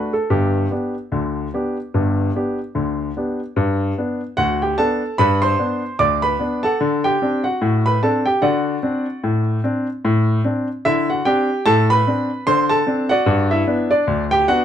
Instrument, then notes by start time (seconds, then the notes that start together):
grand piano
Already playing: A3 D4 F#4 B4
0.13 A4
0.30 G1 G2 G4
0.71 B3 D4 G4
1.12 D2 D3
1.54 B3 D4 G4
1.94 G1 G2
2.36 B3 D4 G4
2.75 D2 D3
3.17 B3 D4 G4
3.56 G2
3.98 B3 D4
4.37 D2 F#4 F#5
4.62 G4 G5
4.78 B3 D4 A4 A5
5.18 G2 B4 B5
5.42 C5 C6
5.59 B3 D4
5.99 D2 D5 D6
6.22 B4 B5
6.39 B3 D4
6.63 A4 F#5 A5
6.81 D3
7.04 G4 G5
7.22 C4 D4
7.44 F#4 F#5
7.62 A2
7.86 B4 B5
8.03 C4 D4 A4 A5
8.26 G4 G5
8.42 D3 F#4 D5 F#5
8.83 C4 D4
9.24 A2
9.64 C4 D4
10.05 A2
10.44 C4 D4
10.85 D3 E4 E5
11.10 F#4 F#5
11.25 C4 D4 G4 G5
11.66 A2 A4 A5
11.90 B4 B5
12.07 C4 D4
12.47 D3 C5 C6
12.69 A4 A5
12.87 C4 D4
13.09 F#4 D5 F#5
13.26 G2
13.51 E4 E5
13.67 B3 D4
13.91 D4 D5
14.07 D2
14.31 G4 G5
14.48 B3 D4 F#4 F#5